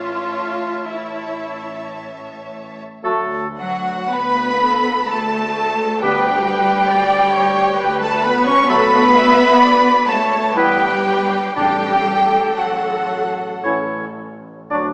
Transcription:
Already playing: A1 A2 F4 C#5 E5 A5
0.89 E4 C#5 E5 A5
3.03 D2 F#3 A3 F#4 A4
3.58 F#3 F#4 F#5
4.11 D2 B3 B4 B5
4.63 A4
5.10 D2 A3 A4 A5
6.02 D2 D3 G3 B3 G4 B4 G5
6.47 B4
6.90 D2 D5
7.34 C#5
7.79 D2 B4
8.01 A3 A4 A5
8.23 B3 B4 B5
8.46 C#4 C#5 C#6
8.68 D2 F#3 A3 B3 F#4 A4 B4 B5
9.14 E5
9.61 D2 D5
10.08 A3 A4 C#5 A5
10.56 G1 E3 G3 B3 E4 G4 B4 G5
11.56 A1 A2 D3 G3 D4 G4 A4 D5 G5
12.58 A1 F#3 F#4 F#5
13.64 A1 E3 C#4 E4 C#5
14.71 D2 F#3 D4 F#4 D5

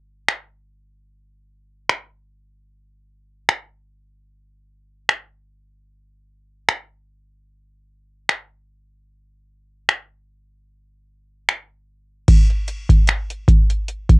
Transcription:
0.29 finger snap
1.89 finger snap
3.49 finger snap
5.09 finger snap
6.69 finger snap
8.29 finger snap
9.89 finger snap
11.49 finger snap
12.28 kick, closed hi-hat, crash
12.50 closed hi-hat
12.68 closed hi-hat
12.89 kick, closed hi-hat
13.07 finger snap, closed hi-hat
13.30 closed hi-hat
13.48 kick, closed hi-hat
13.70 closed hi-hat
13.88 closed hi-hat
14.09 kick, closed hi-hat

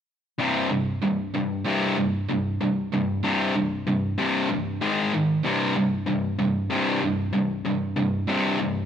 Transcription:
0.38 C2 G2 C3
0.71 C2 G2
1.03 C2 G2
1.35 C2 G2
1.65 C2 G2 C3
1.98 C2 G2
2.29 C2 G2
2.61 C2 G2
2.94 C2 G2
3.23 C2 G2 C3
3.56 C2 G2
3.87 C2 G2
4.18 C2 G2 C3
4.50 C2 G2
4.81 G#2 D#3 G#3
5.14 G#2 D#3
5.45 C2 G2 C3
5.76 C2 G2
6.06 C2 G2
6.39 C2 G2
6.70 C2 G2 C3
7.02 C2 G2
7.33 C2 G2
7.65 C2 G2
7.96 C2 G2
8.28 C2 G2 C3
8.59 C2 G2

